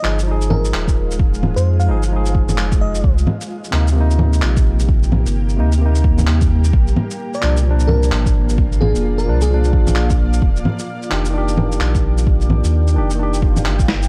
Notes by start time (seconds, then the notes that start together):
Already playing: G#3 F4 D#5
0.02 G1 F3 D#4 G#4, clap
0.19 shaker
0.23 F3
0.27 D#4
0.31 G#4
0.41 shaker
0.50 A#4, low bongo
0.65 shaker
0.74 D#1, clap
0.88 kick, shaker
1.11 shaker
1.19 kick
1.34 shaker
1.43 low bongo
1.56 F2 C5, shaker
1.80 F5, shaker
1.86 G1 F3 D#4
1.91 G#4
2.03 shaker
2.08 F3
2.12 D#4 G#4
2.26 shaker
2.35 F1, kick
2.49 low bongo, shaker
2.58 clap
2.72 kick, shaker
2.81 D#5
2.95 shaker
3.04 C2 A#3, kick
3.18 shaker
3.27 low bongo
3.35 G4
3.41 shaker
3.64 shaker
3.71 D2 C3 A#3, clap
3.75 D#4
3.87 shaker
3.92 C3 A#3
4.00 D#4
4.11 shaker
4.19 low bongo
4.33 shaker
4.42 A#1, clap
4.57 kick, shaker
4.80 shaker
4.89 kick
5.03 shaker
5.12 low bongo
5.26 G1, shaker
5.49 shaker
5.56 D2 C3 A#3 D#4
5.72 shaker
5.77 C3 A#3
5.85 D#4
5.95 shaker
6.04 kick
6.18 low bongo, shaker
6.27 D#2, clap
6.41 kick, shaker
6.64 shaker
6.73 A#1, kick
6.87 shaker
6.96 low bongo
7.11 shaker
7.34 F4 D5, shaker
7.41 C2 A#2 F3 D4, clap
7.57 shaker
7.63 A#2
7.67 F3 D4
7.80 shaker
7.87 A#4, low bongo
8.00 D5, shaker
8.12 G#1, clap
8.26 kick, shaker
8.31 F5
8.49 shaker
8.58 kick
8.72 shaker
8.81 G#4, low bongo
8.95 F1, shaker
9.18 A#4, shaker
9.25 C2 A#2 F3 D4
9.41 G#4, shaker
9.46 A#2
9.50 F3 D4
9.64 shaker
9.73 A#1, kick
9.87 low bongo, shaker
9.95 clap
10.10 kick, shaker
10.33 shaker
10.42 D#1, kick
10.56 shaker
10.65 low bongo
10.79 shaker
11.02 shaker
11.10 F1 D#3 D4 G4, clap
11.25 shaker
11.30 D#3 D4
11.38 G4
11.48 shaker
11.57 low bongo
11.72 shaker
11.80 A#1 G5, clap
11.95 kick, shaker
12.18 shaker
12.27 kick
12.41 shaker
12.50 low bongo
12.64 D#2, shaker
12.87 shaker
12.94 F1 D#3 D4 G4
13.10 shaker
13.15 D#3
13.19 D4 G4, swell
13.34 shaker
13.42 kick
13.56 low bongo, shaker
13.65 G1, clap
13.79 kick, shaker
13.88 snare
14.03 shaker